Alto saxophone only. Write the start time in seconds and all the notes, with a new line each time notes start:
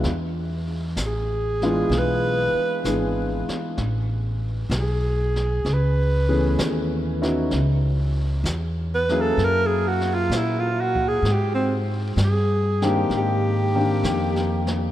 1.06 G#4
1.98 B4
4.79 G#4
5.73 B4
8.95 B4
9.21 A4
9.44 A#4
9.66 G#4
9.87 F#4
10.14 F4
10.36 E4
10.60 F4
10.81 F#4
11.08 G#4
11.32 G4
11.54 C4
12.24 G#4
12.86 G4
13.17 G4